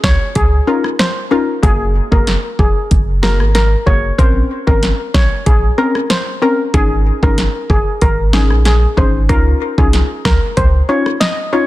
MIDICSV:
0, 0, Header, 1, 5, 480
1, 0, Start_track
1, 0, Tempo, 638298
1, 1229, Time_signature, 4, 2, 24, 8
1, 8774, End_track
2, 0, Start_track
2, 0, Title_t, "Steel pan"
2, 0, Program_c, 0, 114
2, 30, Note_on_c, 0, 73, 86
2, 111, Note_off_c, 0, 73, 0
2, 268, Note_on_c, 0, 68, 88
2, 350, Note_off_c, 0, 68, 0
2, 507, Note_on_c, 0, 70, 70
2, 589, Note_off_c, 0, 70, 0
2, 747, Note_on_c, 0, 72, 88
2, 829, Note_off_c, 0, 72, 0
2, 987, Note_on_c, 0, 70, 72
2, 1069, Note_off_c, 0, 70, 0
2, 1227, Note_on_c, 0, 68, 97
2, 1381, Note_off_c, 0, 68, 0
2, 1596, Note_on_c, 0, 70, 77
2, 1668, Note_off_c, 0, 70, 0
2, 1951, Note_on_c, 0, 68, 75
2, 2032, Note_off_c, 0, 68, 0
2, 2430, Note_on_c, 0, 70, 89
2, 2511, Note_off_c, 0, 70, 0
2, 2669, Note_on_c, 0, 70, 86
2, 2750, Note_off_c, 0, 70, 0
2, 2908, Note_on_c, 0, 73, 83
2, 2990, Note_off_c, 0, 73, 0
2, 3147, Note_on_c, 0, 72, 88
2, 3301, Note_off_c, 0, 72, 0
2, 3514, Note_on_c, 0, 70, 75
2, 3587, Note_off_c, 0, 70, 0
2, 3867, Note_on_c, 0, 73, 78
2, 3949, Note_off_c, 0, 73, 0
2, 4109, Note_on_c, 0, 68, 82
2, 4190, Note_off_c, 0, 68, 0
2, 4347, Note_on_c, 0, 70, 90
2, 4429, Note_off_c, 0, 70, 0
2, 4588, Note_on_c, 0, 72, 82
2, 4670, Note_off_c, 0, 72, 0
2, 4830, Note_on_c, 0, 70, 76
2, 4911, Note_off_c, 0, 70, 0
2, 5069, Note_on_c, 0, 68, 109
2, 5223, Note_off_c, 0, 68, 0
2, 5437, Note_on_c, 0, 70, 78
2, 5509, Note_off_c, 0, 70, 0
2, 5792, Note_on_c, 0, 68, 81
2, 5873, Note_off_c, 0, 68, 0
2, 6030, Note_on_c, 0, 70, 84
2, 6111, Note_off_c, 0, 70, 0
2, 6270, Note_on_c, 0, 68, 83
2, 6351, Note_off_c, 0, 68, 0
2, 6510, Note_on_c, 0, 68, 84
2, 6591, Note_off_c, 0, 68, 0
2, 6752, Note_on_c, 0, 72, 74
2, 6833, Note_off_c, 0, 72, 0
2, 6988, Note_on_c, 0, 70, 107
2, 7142, Note_off_c, 0, 70, 0
2, 7359, Note_on_c, 0, 68, 79
2, 7430, Note_off_c, 0, 68, 0
2, 7709, Note_on_c, 0, 70, 85
2, 7790, Note_off_c, 0, 70, 0
2, 7948, Note_on_c, 0, 72, 84
2, 8030, Note_off_c, 0, 72, 0
2, 8188, Note_on_c, 0, 73, 71
2, 8270, Note_off_c, 0, 73, 0
2, 8426, Note_on_c, 0, 75, 87
2, 8508, Note_off_c, 0, 75, 0
2, 8669, Note_on_c, 0, 73, 76
2, 8750, Note_off_c, 0, 73, 0
2, 8774, End_track
3, 0, Start_track
3, 0, Title_t, "Synth pluck"
3, 0, Program_c, 1, 84
3, 506, Note_on_c, 1, 61, 78
3, 508, Note_on_c, 1, 63, 71
3, 511, Note_on_c, 1, 65, 90
3, 670, Note_off_c, 1, 61, 0
3, 671, Note_off_c, 1, 63, 0
3, 672, Note_off_c, 1, 65, 0
3, 985, Note_on_c, 1, 61, 79
3, 987, Note_on_c, 1, 63, 69
3, 990, Note_on_c, 1, 65, 88
3, 1149, Note_off_c, 1, 61, 0
3, 1150, Note_off_c, 1, 63, 0
3, 1152, Note_off_c, 1, 65, 0
3, 1223, Note_on_c, 1, 58, 94
3, 1225, Note_on_c, 1, 66, 85
3, 1228, Note_on_c, 1, 68, 101
3, 1563, Note_off_c, 1, 58, 0
3, 1564, Note_off_c, 1, 66, 0
3, 1565, Note_off_c, 1, 68, 0
3, 1591, Note_on_c, 1, 58, 78
3, 1593, Note_on_c, 1, 66, 72
3, 1596, Note_on_c, 1, 68, 85
3, 1746, Note_off_c, 1, 58, 0
3, 1747, Note_off_c, 1, 66, 0
3, 1748, Note_off_c, 1, 68, 0
3, 2426, Note_on_c, 1, 58, 78
3, 2427, Note_on_c, 1, 66, 70
3, 2431, Note_on_c, 1, 68, 85
3, 2590, Note_off_c, 1, 58, 0
3, 2590, Note_off_c, 1, 66, 0
3, 2592, Note_off_c, 1, 68, 0
3, 2905, Note_on_c, 1, 58, 79
3, 2908, Note_on_c, 1, 66, 73
3, 2910, Note_on_c, 1, 68, 86
3, 3069, Note_off_c, 1, 58, 0
3, 3070, Note_off_c, 1, 66, 0
3, 3071, Note_off_c, 1, 68, 0
3, 3146, Note_on_c, 1, 60, 99
3, 3149, Note_on_c, 1, 61, 88
3, 3151, Note_on_c, 1, 70, 103
3, 3484, Note_off_c, 1, 60, 0
3, 3485, Note_off_c, 1, 61, 0
3, 3486, Note_off_c, 1, 70, 0
3, 3512, Note_on_c, 1, 60, 79
3, 3515, Note_on_c, 1, 61, 71
3, 3517, Note_on_c, 1, 70, 85
3, 3666, Note_off_c, 1, 60, 0
3, 3668, Note_off_c, 1, 61, 0
3, 3669, Note_off_c, 1, 70, 0
3, 4347, Note_on_c, 1, 60, 77
3, 4349, Note_on_c, 1, 61, 73
3, 4351, Note_on_c, 1, 70, 83
3, 4510, Note_off_c, 1, 60, 0
3, 4511, Note_off_c, 1, 61, 0
3, 4512, Note_off_c, 1, 70, 0
3, 4826, Note_on_c, 1, 60, 77
3, 4829, Note_on_c, 1, 61, 72
3, 4830, Note_on_c, 1, 70, 89
3, 4989, Note_off_c, 1, 60, 0
3, 4991, Note_off_c, 1, 61, 0
3, 4991, Note_off_c, 1, 70, 0
3, 5068, Note_on_c, 1, 61, 95
3, 5071, Note_on_c, 1, 63, 88
3, 5073, Note_on_c, 1, 68, 104
3, 5405, Note_off_c, 1, 61, 0
3, 5407, Note_off_c, 1, 63, 0
3, 5408, Note_off_c, 1, 68, 0
3, 5435, Note_on_c, 1, 61, 79
3, 5437, Note_on_c, 1, 63, 72
3, 5440, Note_on_c, 1, 68, 85
3, 5588, Note_off_c, 1, 61, 0
3, 5589, Note_off_c, 1, 63, 0
3, 5590, Note_off_c, 1, 68, 0
3, 6268, Note_on_c, 1, 61, 77
3, 6269, Note_on_c, 1, 63, 70
3, 6271, Note_on_c, 1, 68, 90
3, 6430, Note_off_c, 1, 61, 0
3, 6431, Note_off_c, 1, 63, 0
3, 6432, Note_off_c, 1, 68, 0
3, 6746, Note_on_c, 1, 61, 79
3, 6748, Note_on_c, 1, 63, 72
3, 6750, Note_on_c, 1, 68, 89
3, 6910, Note_off_c, 1, 61, 0
3, 6911, Note_off_c, 1, 63, 0
3, 6912, Note_off_c, 1, 68, 0
3, 6987, Note_on_c, 1, 61, 96
3, 6989, Note_on_c, 1, 63, 90
3, 6991, Note_on_c, 1, 65, 106
3, 7324, Note_off_c, 1, 61, 0
3, 7325, Note_off_c, 1, 63, 0
3, 7327, Note_off_c, 1, 65, 0
3, 7354, Note_on_c, 1, 61, 80
3, 7357, Note_on_c, 1, 63, 68
3, 7359, Note_on_c, 1, 65, 83
3, 7507, Note_off_c, 1, 61, 0
3, 7509, Note_off_c, 1, 63, 0
3, 7510, Note_off_c, 1, 65, 0
3, 8188, Note_on_c, 1, 61, 78
3, 8190, Note_on_c, 1, 63, 70
3, 8192, Note_on_c, 1, 65, 86
3, 8350, Note_off_c, 1, 61, 0
3, 8351, Note_off_c, 1, 63, 0
3, 8352, Note_off_c, 1, 65, 0
3, 8667, Note_on_c, 1, 61, 75
3, 8670, Note_on_c, 1, 63, 73
3, 8672, Note_on_c, 1, 65, 85
3, 8774, Note_off_c, 1, 61, 0
3, 8774, Note_off_c, 1, 63, 0
3, 8774, Note_off_c, 1, 65, 0
3, 8774, End_track
4, 0, Start_track
4, 0, Title_t, "Sub bass"
4, 0, Program_c, 2, 38
4, 27, Note_on_c, 2, 37, 90
4, 124, Note_off_c, 2, 37, 0
4, 269, Note_on_c, 2, 37, 103
4, 451, Note_off_c, 2, 37, 0
4, 1227, Note_on_c, 2, 30, 111
4, 1505, Note_off_c, 2, 30, 0
4, 1594, Note_on_c, 2, 30, 98
4, 1776, Note_off_c, 2, 30, 0
4, 1948, Note_on_c, 2, 29, 101
4, 2044, Note_off_c, 2, 29, 0
4, 2190, Note_on_c, 2, 30, 103
4, 2556, Note_on_c, 2, 32, 88
4, 2567, Note_off_c, 2, 30, 0
4, 2822, Note_off_c, 2, 32, 0
4, 2909, Note_on_c, 2, 30, 95
4, 3090, Note_off_c, 2, 30, 0
4, 3148, Note_on_c, 2, 34, 110
4, 3330, Note_off_c, 2, 34, 0
4, 3516, Note_on_c, 2, 32, 96
4, 3697, Note_off_c, 2, 32, 0
4, 3868, Note_on_c, 2, 34, 96
4, 3965, Note_off_c, 2, 34, 0
4, 4110, Note_on_c, 2, 34, 111
4, 4291, Note_off_c, 2, 34, 0
4, 5068, Note_on_c, 2, 32, 106
4, 5346, Note_off_c, 2, 32, 0
4, 5435, Note_on_c, 2, 32, 84
4, 5617, Note_off_c, 2, 32, 0
4, 5789, Note_on_c, 2, 30, 99
4, 5885, Note_off_c, 2, 30, 0
4, 6030, Note_on_c, 2, 32, 111
4, 6397, Note_on_c, 2, 34, 88
4, 6408, Note_off_c, 2, 32, 0
4, 6664, Note_off_c, 2, 34, 0
4, 6749, Note_on_c, 2, 32, 96
4, 6989, Note_on_c, 2, 37, 104
4, 7000, Note_off_c, 2, 32, 0
4, 7170, Note_off_c, 2, 37, 0
4, 7355, Note_on_c, 2, 36, 94
4, 7537, Note_off_c, 2, 36, 0
4, 7709, Note_on_c, 2, 37, 92
4, 7805, Note_off_c, 2, 37, 0
4, 7951, Note_on_c, 2, 37, 100
4, 8132, Note_off_c, 2, 37, 0
4, 8774, End_track
5, 0, Start_track
5, 0, Title_t, "Drums"
5, 27, Note_on_c, 9, 36, 93
5, 27, Note_on_c, 9, 38, 117
5, 102, Note_off_c, 9, 38, 0
5, 103, Note_off_c, 9, 36, 0
5, 266, Note_on_c, 9, 42, 66
5, 270, Note_on_c, 9, 36, 89
5, 341, Note_off_c, 9, 42, 0
5, 345, Note_off_c, 9, 36, 0
5, 634, Note_on_c, 9, 37, 93
5, 709, Note_off_c, 9, 37, 0
5, 747, Note_on_c, 9, 38, 112
5, 747, Note_on_c, 9, 42, 79
5, 822, Note_off_c, 9, 38, 0
5, 823, Note_off_c, 9, 42, 0
5, 1228, Note_on_c, 9, 36, 120
5, 1228, Note_on_c, 9, 42, 74
5, 1303, Note_off_c, 9, 36, 0
5, 1304, Note_off_c, 9, 42, 0
5, 1594, Note_on_c, 9, 36, 102
5, 1669, Note_off_c, 9, 36, 0
5, 1708, Note_on_c, 9, 42, 76
5, 1710, Note_on_c, 9, 38, 65
5, 1784, Note_off_c, 9, 42, 0
5, 1785, Note_off_c, 9, 38, 0
5, 1948, Note_on_c, 9, 36, 92
5, 2023, Note_off_c, 9, 36, 0
5, 2188, Note_on_c, 9, 42, 66
5, 2191, Note_on_c, 9, 36, 90
5, 2263, Note_off_c, 9, 42, 0
5, 2266, Note_off_c, 9, 36, 0
5, 2428, Note_on_c, 9, 38, 111
5, 2503, Note_off_c, 9, 38, 0
5, 2557, Note_on_c, 9, 37, 95
5, 2633, Note_off_c, 9, 37, 0
5, 2668, Note_on_c, 9, 38, 70
5, 2669, Note_on_c, 9, 42, 81
5, 2744, Note_off_c, 9, 38, 0
5, 2744, Note_off_c, 9, 42, 0
5, 2909, Note_on_c, 9, 36, 91
5, 2984, Note_off_c, 9, 36, 0
5, 3149, Note_on_c, 9, 36, 118
5, 3151, Note_on_c, 9, 42, 76
5, 3224, Note_off_c, 9, 36, 0
5, 3226, Note_off_c, 9, 42, 0
5, 3515, Note_on_c, 9, 36, 99
5, 3590, Note_off_c, 9, 36, 0
5, 3629, Note_on_c, 9, 42, 74
5, 3631, Note_on_c, 9, 38, 69
5, 3705, Note_off_c, 9, 42, 0
5, 3706, Note_off_c, 9, 38, 0
5, 3869, Note_on_c, 9, 36, 88
5, 3869, Note_on_c, 9, 38, 114
5, 3944, Note_off_c, 9, 36, 0
5, 3944, Note_off_c, 9, 38, 0
5, 4108, Note_on_c, 9, 42, 66
5, 4111, Note_on_c, 9, 36, 92
5, 4184, Note_off_c, 9, 42, 0
5, 4186, Note_off_c, 9, 36, 0
5, 4476, Note_on_c, 9, 37, 95
5, 4551, Note_off_c, 9, 37, 0
5, 4587, Note_on_c, 9, 38, 116
5, 4587, Note_on_c, 9, 42, 87
5, 4662, Note_off_c, 9, 38, 0
5, 4663, Note_off_c, 9, 42, 0
5, 5068, Note_on_c, 9, 36, 122
5, 5068, Note_on_c, 9, 42, 74
5, 5143, Note_off_c, 9, 36, 0
5, 5143, Note_off_c, 9, 42, 0
5, 5435, Note_on_c, 9, 36, 101
5, 5510, Note_off_c, 9, 36, 0
5, 5548, Note_on_c, 9, 42, 75
5, 5550, Note_on_c, 9, 38, 70
5, 5624, Note_off_c, 9, 42, 0
5, 5625, Note_off_c, 9, 38, 0
5, 5788, Note_on_c, 9, 36, 93
5, 5864, Note_off_c, 9, 36, 0
5, 6027, Note_on_c, 9, 42, 67
5, 6031, Note_on_c, 9, 36, 93
5, 6102, Note_off_c, 9, 42, 0
5, 6106, Note_off_c, 9, 36, 0
5, 6266, Note_on_c, 9, 38, 115
5, 6341, Note_off_c, 9, 38, 0
5, 6395, Note_on_c, 9, 37, 94
5, 6470, Note_off_c, 9, 37, 0
5, 6507, Note_on_c, 9, 38, 67
5, 6508, Note_on_c, 9, 42, 82
5, 6582, Note_off_c, 9, 38, 0
5, 6583, Note_off_c, 9, 42, 0
5, 6749, Note_on_c, 9, 36, 84
5, 6824, Note_off_c, 9, 36, 0
5, 6989, Note_on_c, 9, 36, 116
5, 6989, Note_on_c, 9, 42, 77
5, 7064, Note_off_c, 9, 36, 0
5, 7064, Note_off_c, 9, 42, 0
5, 7355, Note_on_c, 9, 36, 105
5, 7430, Note_off_c, 9, 36, 0
5, 7469, Note_on_c, 9, 42, 75
5, 7470, Note_on_c, 9, 38, 65
5, 7544, Note_off_c, 9, 42, 0
5, 7546, Note_off_c, 9, 38, 0
5, 7709, Note_on_c, 9, 36, 91
5, 7709, Note_on_c, 9, 38, 117
5, 7784, Note_off_c, 9, 36, 0
5, 7784, Note_off_c, 9, 38, 0
5, 7949, Note_on_c, 9, 42, 66
5, 7951, Note_on_c, 9, 36, 92
5, 8024, Note_off_c, 9, 42, 0
5, 8026, Note_off_c, 9, 36, 0
5, 8318, Note_on_c, 9, 37, 96
5, 8393, Note_off_c, 9, 37, 0
5, 8428, Note_on_c, 9, 38, 113
5, 8429, Note_on_c, 9, 42, 80
5, 8504, Note_off_c, 9, 38, 0
5, 8504, Note_off_c, 9, 42, 0
5, 8774, End_track
0, 0, End_of_file